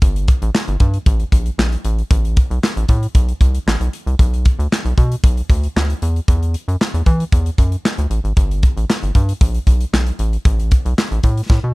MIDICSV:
0, 0, Header, 1, 3, 480
1, 0, Start_track
1, 0, Tempo, 521739
1, 17, Time_signature, 4, 2, 24, 8
1, 10801, End_track
2, 0, Start_track
2, 0, Title_t, "Analog synth bass"
2, 0, Program_c, 0, 38
2, 19, Note_on_c, 0, 31, 101
2, 271, Note_off_c, 0, 31, 0
2, 386, Note_on_c, 0, 33, 105
2, 463, Note_off_c, 0, 33, 0
2, 625, Note_on_c, 0, 31, 106
2, 703, Note_off_c, 0, 31, 0
2, 738, Note_on_c, 0, 43, 98
2, 903, Note_off_c, 0, 43, 0
2, 978, Note_on_c, 0, 33, 106
2, 1143, Note_off_c, 0, 33, 0
2, 1216, Note_on_c, 0, 34, 75
2, 1382, Note_off_c, 0, 34, 0
2, 1457, Note_on_c, 0, 34, 91
2, 1622, Note_off_c, 0, 34, 0
2, 1699, Note_on_c, 0, 33, 108
2, 1864, Note_off_c, 0, 33, 0
2, 1940, Note_on_c, 0, 33, 105
2, 2192, Note_off_c, 0, 33, 0
2, 2305, Note_on_c, 0, 35, 93
2, 2383, Note_off_c, 0, 35, 0
2, 2544, Note_on_c, 0, 33, 99
2, 2622, Note_off_c, 0, 33, 0
2, 2659, Note_on_c, 0, 45, 113
2, 2824, Note_off_c, 0, 45, 0
2, 2897, Note_on_c, 0, 35, 98
2, 3063, Note_off_c, 0, 35, 0
2, 3135, Note_on_c, 0, 36, 88
2, 3301, Note_off_c, 0, 36, 0
2, 3375, Note_on_c, 0, 33, 85
2, 3464, Note_off_c, 0, 33, 0
2, 3499, Note_on_c, 0, 35, 87
2, 3579, Note_off_c, 0, 35, 0
2, 3740, Note_on_c, 0, 36, 85
2, 3819, Note_off_c, 0, 36, 0
2, 3858, Note_on_c, 0, 35, 101
2, 4111, Note_off_c, 0, 35, 0
2, 4221, Note_on_c, 0, 38, 92
2, 4300, Note_off_c, 0, 38, 0
2, 4462, Note_on_c, 0, 35, 94
2, 4540, Note_off_c, 0, 35, 0
2, 4579, Note_on_c, 0, 47, 99
2, 4744, Note_off_c, 0, 47, 0
2, 4818, Note_on_c, 0, 35, 94
2, 4983, Note_off_c, 0, 35, 0
2, 5056, Note_on_c, 0, 38, 96
2, 5222, Note_off_c, 0, 38, 0
2, 5302, Note_on_c, 0, 38, 89
2, 5466, Note_off_c, 0, 38, 0
2, 5541, Note_on_c, 0, 40, 90
2, 5705, Note_off_c, 0, 40, 0
2, 5779, Note_on_c, 0, 40, 112
2, 6032, Note_off_c, 0, 40, 0
2, 6145, Note_on_c, 0, 42, 93
2, 6223, Note_off_c, 0, 42, 0
2, 6384, Note_on_c, 0, 40, 94
2, 6462, Note_off_c, 0, 40, 0
2, 6498, Note_on_c, 0, 52, 106
2, 6663, Note_off_c, 0, 52, 0
2, 6737, Note_on_c, 0, 40, 99
2, 6903, Note_off_c, 0, 40, 0
2, 6976, Note_on_c, 0, 42, 92
2, 7142, Note_off_c, 0, 42, 0
2, 7344, Note_on_c, 0, 38, 85
2, 7422, Note_off_c, 0, 38, 0
2, 7454, Note_on_c, 0, 33, 86
2, 7543, Note_off_c, 0, 33, 0
2, 7581, Note_on_c, 0, 32, 87
2, 7660, Note_off_c, 0, 32, 0
2, 7698, Note_on_c, 0, 31, 110
2, 7951, Note_off_c, 0, 31, 0
2, 8065, Note_on_c, 0, 33, 82
2, 8143, Note_off_c, 0, 33, 0
2, 8306, Note_on_c, 0, 31, 87
2, 8383, Note_off_c, 0, 31, 0
2, 8419, Note_on_c, 0, 43, 111
2, 8584, Note_off_c, 0, 43, 0
2, 8657, Note_on_c, 0, 34, 101
2, 8823, Note_off_c, 0, 34, 0
2, 8895, Note_on_c, 0, 35, 78
2, 9062, Note_off_c, 0, 35, 0
2, 9138, Note_on_c, 0, 35, 85
2, 9304, Note_off_c, 0, 35, 0
2, 9377, Note_on_c, 0, 33, 104
2, 9542, Note_off_c, 0, 33, 0
2, 9617, Note_on_c, 0, 33, 100
2, 9870, Note_off_c, 0, 33, 0
2, 9986, Note_on_c, 0, 35, 92
2, 10064, Note_off_c, 0, 35, 0
2, 10225, Note_on_c, 0, 33, 92
2, 10302, Note_off_c, 0, 33, 0
2, 10338, Note_on_c, 0, 45, 102
2, 10504, Note_off_c, 0, 45, 0
2, 10579, Note_on_c, 0, 45, 101
2, 10666, Note_off_c, 0, 45, 0
2, 10707, Note_on_c, 0, 47, 82
2, 10784, Note_off_c, 0, 47, 0
2, 10801, End_track
3, 0, Start_track
3, 0, Title_t, "Drums"
3, 18, Note_on_c, 9, 36, 115
3, 18, Note_on_c, 9, 42, 91
3, 110, Note_off_c, 9, 36, 0
3, 110, Note_off_c, 9, 42, 0
3, 148, Note_on_c, 9, 42, 51
3, 240, Note_off_c, 9, 42, 0
3, 255, Note_on_c, 9, 42, 71
3, 260, Note_on_c, 9, 36, 110
3, 347, Note_off_c, 9, 42, 0
3, 352, Note_off_c, 9, 36, 0
3, 387, Note_on_c, 9, 42, 49
3, 479, Note_off_c, 9, 42, 0
3, 503, Note_on_c, 9, 38, 114
3, 509, Note_on_c, 9, 39, 91
3, 595, Note_off_c, 9, 38, 0
3, 601, Note_off_c, 9, 39, 0
3, 626, Note_on_c, 9, 42, 51
3, 718, Note_off_c, 9, 42, 0
3, 734, Note_on_c, 9, 42, 72
3, 738, Note_on_c, 9, 36, 93
3, 826, Note_off_c, 9, 42, 0
3, 830, Note_off_c, 9, 36, 0
3, 861, Note_on_c, 9, 42, 48
3, 953, Note_off_c, 9, 42, 0
3, 977, Note_on_c, 9, 42, 91
3, 978, Note_on_c, 9, 36, 122
3, 1069, Note_off_c, 9, 42, 0
3, 1070, Note_off_c, 9, 36, 0
3, 1101, Note_on_c, 9, 42, 44
3, 1193, Note_off_c, 9, 42, 0
3, 1216, Note_on_c, 9, 36, 93
3, 1221, Note_on_c, 9, 42, 95
3, 1308, Note_off_c, 9, 36, 0
3, 1313, Note_off_c, 9, 42, 0
3, 1341, Note_on_c, 9, 42, 50
3, 1433, Note_off_c, 9, 42, 0
3, 1463, Note_on_c, 9, 38, 114
3, 1469, Note_on_c, 9, 39, 97
3, 1555, Note_off_c, 9, 38, 0
3, 1561, Note_off_c, 9, 39, 0
3, 1584, Note_on_c, 9, 42, 53
3, 1676, Note_off_c, 9, 42, 0
3, 1697, Note_on_c, 9, 42, 79
3, 1789, Note_off_c, 9, 42, 0
3, 1826, Note_on_c, 9, 42, 43
3, 1918, Note_off_c, 9, 42, 0
3, 1938, Note_on_c, 9, 36, 118
3, 1940, Note_on_c, 9, 42, 91
3, 2030, Note_off_c, 9, 36, 0
3, 2032, Note_off_c, 9, 42, 0
3, 2069, Note_on_c, 9, 42, 51
3, 2161, Note_off_c, 9, 42, 0
3, 2177, Note_on_c, 9, 42, 75
3, 2181, Note_on_c, 9, 36, 114
3, 2269, Note_off_c, 9, 42, 0
3, 2273, Note_off_c, 9, 36, 0
3, 2311, Note_on_c, 9, 42, 45
3, 2403, Note_off_c, 9, 42, 0
3, 2425, Note_on_c, 9, 38, 120
3, 2431, Note_on_c, 9, 39, 86
3, 2517, Note_off_c, 9, 38, 0
3, 2523, Note_off_c, 9, 39, 0
3, 2549, Note_on_c, 9, 42, 50
3, 2641, Note_off_c, 9, 42, 0
3, 2655, Note_on_c, 9, 42, 80
3, 2658, Note_on_c, 9, 36, 93
3, 2747, Note_off_c, 9, 42, 0
3, 2750, Note_off_c, 9, 36, 0
3, 2785, Note_on_c, 9, 42, 49
3, 2877, Note_off_c, 9, 42, 0
3, 2897, Note_on_c, 9, 36, 119
3, 2899, Note_on_c, 9, 42, 99
3, 2989, Note_off_c, 9, 36, 0
3, 2991, Note_off_c, 9, 42, 0
3, 3023, Note_on_c, 9, 42, 52
3, 3115, Note_off_c, 9, 42, 0
3, 3135, Note_on_c, 9, 36, 96
3, 3141, Note_on_c, 9, 42, 92
3, 3227, Note_off_c, 9, 36, 0
3, 3233, Note_off_c, 9, 42, 0
3, 3263, Note_on_c, 9, 42, 57
3, 3355, Note_off_c, 9, 42, 0
3, 3385, Note_on_c, 9, 38, 127
3, 3391, Note_on_c, 9, 39, 98
3, 3477, Note_off_c, 9, 38, 0
3, 3483, Note_off_c, 9, 39, 0
3, 3503, Note_on_c, 9, 42, 56
3, 3595, Note_off_c, 9, 42, 0
3, 3619, Note_on_c, 9, 42, 76
3, 3711, Note_off_c, 9, 42, 0
3, 3748, Note_on_c, 9, 42, 41
3, 3840, Note_off_c, 9, 42, 0
3, 3857, Note_on_c, 9, 36, 110
3, 3860, Note_on_c, 9, 42, 80
3, 3949, Note_off_c, 9, 36, 0
3, 3952, Note_off_c, 9, 42, 0
3, 3989, Note_on_c, 9, 42, 52
3, 4081, Note_off_c, 9, 42, 0
3, 4096, Note_on_c, 9, 42, 75
3, 4100, Note_on_c, 9, 36, 102
3, 4188, Note_off_c, 9, 42, 0
3, 4192, Note_off_c, 9, 36, 0
3, 4231, Note_on_c, 9, 42, 47
3, 4323, Note_off_c, 9, 42, 0
3, 4347, Note_on_c, 9, 38, 116
3, 4353, Note_on_c, 9, 39, 90
3, 4439, Note_off_c, 9, 38, 0
3, 4445, Note_off_c, 9, 39, 0
3, 4469, Note_on_c, 9, 42, 54
3, 4561, Note_off_c, 9, 42, 0
3, 4577, Note_on_c, 9, 42, 71
3, 4578, Note_on_c, 9, 36, 91
3, 4669, Note_off_c, 9, 42, 0
3, 4670, Note_off_c, 9, 36, 0
3, 4707, Note_on_c, 9, 42, 53
3, 4799, Note_off_c, 9, 42, 0
3, 4818, Note_on_c, 9, 36, 127
3, 4819, Note_on_c, 9, 42, 93
3, 4910, Note_off_c, 9, 36, 0
3, 4911, Note_off_c, 9, 42, 0
3, 4943, Note_on_c, 9, 42, 48
3, 5035, Note_off_c, 9, 42, 0
3, 5056, Note_on_c, 9, 36, 98
3, 5063, Note_on_c, 9, 42, 99
3, 5148, Note_off_c, 9, 36, 0
3, 5155, Note_off_c, 9, 42, 0
3, 5184, Note_on_c, 9, 42, 50
3, 5276, Note_off_c, 9, 42, 0
3, 5306, Note_on_c, 9, 38, 125
3, 5312, Note_on_c, 9, 39, 89
3, 5398, Note_off_c, 9, 38, 0
3, 5404, Note_off_c, 9, 39, 0
3, 5427, Note_on_c, 9, 42, 53
3, 5519, Note_off_c, 9, 42, 0
3, 5540, Note_on_c, 9, 42, 82
3, 5632, Note_off_c, 9, 42, 0
3, 5670, Note_on_c, 9, 42, 43
3, 5762, Note_off_c, 9, 42, 0
3, 5779, Note_on_c, 9, 36, 115
3, 5782, Note_on_c, 9, 42, 89
3, 5871, Note_off_c, 9, 36, 0
3, 5874, Note_off_c, 9, 42, 0
3, 5912, Note_on_c, 9, 42, 46
3, 6004, Note_off_c, 9, 42, 0
3, 6019, Note_on_c, 9, 42, 71
3, 6111, Note_off_c, 9, 42, 0
3, 6152, Note_on_c, 9, 42, 51
3, 6244, Note_off_c, 9, 42, 0
3, 6267, Note_on_c, 9, 38, 105
3, 6273, Note_on_c, 9, 39, 90
3, 6359, Note_off_c, 9, 38, 0
3, 6365, Note_off_c, 9, 39, 0
3, 6389, Note_on_c, 9, 42, 53
3, 6481, Note_off_c, 9, 42, 0
3, 6496, Note_on_c, 9, 42, 70
3, 6499, Note_on_c, 9, 36, 91
3, 6588, Note_off_c, 9, 42, 0
3, 6591, Note_off_c, 9, 36, 0
3, 6626, Note_on_c, 9, 42, 52
3, 6718, Note_off_c, 9, 42, 0
3, 6738, Note_on_c, 9, 36, 122
3, 6739, Note_on_c, 9, 42, 88
3, 6830, Note_off_c, 9, 36, 0
3, 6831, Note_off_c, 9, 42, 0
3, 6863, Note_on_c, 9, 42, 52
3, 6955, Note_off_c, 9, 42, 0
3, 6976, Note_on_c, 9, 36, 93
3, 6982, Note_on_c, 9, 42, 91
3, 7068, Note_off_c, 9, 36, 0
3, 7074, Note_off_c, 9, 42, 0
3, 7102, Note_on_c, 9, 42, 56
3, 7194, Note_off_c, 9, 42, 0
3, 7224, Note_on_c, 9, 38, 110
3, 7230, Note_on_c, 9, 39, 95
3, 7316, Note_off_c, 9, 38, 0
3, 7322, Note_off_c, 9, 39, 0
3, 7344, Note_on_c, 9, 42, 57
3, 7436, Note_off_c, 9, 42, 0
3, 7459, Note_on_c, 9, 42, 74
3, 7551, Note_off_c, 9, 42, 0
3, 7588, Note_on_c, 9, 42, 44
3, 7680, Note_off_c, 9, 42, 0
3, 7699, Note_on_c, 9, 36, 121
3, 7702, Note_on_c, 9, 42, 89
3, 7791, Note_off_c, 9, 36, 0
3, 7794, Note_off_c, 9, 42, 0
3, 7832, Note_on_c, 9, 42, 51
3, 7924, Note_off_c, 9, 42, 0
3, 7937, Note_on_c, 9, 42, 73
3, 7941, Note_on_c, 9, 36, 104
3, 8029, Note_off_c, 9, 42, 0
3, 8033, Note_off_c, 9, 36, 0
3, 8072, Note_on_c, 9, 42, 52
3, 8164, Note_off_c, 9, 42, 0
3, 8187, Note_on_c, 9, 38, 111
3, 8193, Note_on_c, 9, 39, 90
3, 8279, Note_off_c, 9, 38, 0
3, 8285, Note_off_c, 9, 39, 0
3, 8310, Note_on_c, 9, 42, 52
3, 8402, Note_off_c, 9, 42, 0
3, 8417, Note_on_c, 9, 42, 80
3, 8418, Note_on_c, 9, 36, 94
3, 8509, Note_off_c, 9, 42, 0
3, 8510, Note_off_c, 9, 36, 0
3, 8545, Note_on_c, 9, 42, 55
3, 8637, Note_off_c, 9, 42, 0
3, 8657, Note_on_c, 9, 36, 127
3, 8660, Note_on_c, 9, 42, 87
3, 8749, Note_off_c, 9, 36, 0
3, 8752, Note_off_c, 9, 42, 0
3, 8781, Note_on_c, 9, 42, 48
3, 8873, Note_off_c, 9, 42, 0
3, 8895, Note_on_c, 9, 36, 88
3, 8901, Note_on_c, 9, 42, 90
3, 8987, Note_off_c, 9, 36, 0
3, 8993, Note_off_c, 9, 42, 0
3, 9021, Note_on_c, 9, 42, 57
3, 9113, Note_off_c, 9, 42, 0
3, 9142, Note_on_c, 9, 38, 115
3, 9148, Note_on_c, 9, 39, 96
3, 9234, Note_off_c, 9, 38, 0
3, 9240, Note_off_c, 9, 39, 0
3, 9261, Note_on_c, 9, 42, 52
3, 9353, Note_off_c, 9, 42, 0
3, 9375, Note_on_c, 9, 42, 74
3, 9467, Note_off_c, 9, 42, 0
3, 9504, Note_on_c, 9, 42, 42
3, 9596, Note_off_c, 9, 42, 0
3, 9616, Note_on_c, 9, 36, 125
3, 9616, Note_on_c, 9, 42, 87
3, 9708, Note_off_c, 9, 36, 0
3, 9708, Note_off_c, 9, 42, 0
3, 9748, Note_on_c, 9, 42, 50
3, 9840, Note_off_c, 9, 42, 0
3, 9854, Note_on_c, 9, 42, 75
3, 9860, Note_on_c, 9, 36, 109
3, 9946, Note_off_c, 9, 42, 0
3, 9952, Note_off_c, 9, 36, 0
3, 9989, Note_on_c, 9, 42, 50
3, 10081, Note_off_c, 9, 42, 0
3, 10104, Note_on_c, 9, 38, 117
3, 10110, Note_on_c, 9, 39, 86
3, 10196, Note_off_c, 9, 38, 0
3, 10202, Note_off_c, 9, 39, 0
3, 10227, Note_on_c, 9, 42, 48
3, 10319, Note_off_c, 9, 42, 0
3, 10334, Note_on_c, 9, 42, 77
3, 10338, Note_on_c, 9, 36, 88
3, 10426, Note_off_c, 9, 42, 0
3, 10430, Note_off_c, 9, 36, 0
3, 10465, Note_on_c, 9, 42, 53
3, 10557, Note_off_c, 9, 42, 0
3, 10578, Note_on_c, 9, 36, 122
3, 10584, Note_on_c, 9, 38, 58
3, 10670, Note_off_c, 9, 36, 0
3, 10676, Note_off_c, 9, 38, 0
3, 10801, End_track
0, 0, End_of_file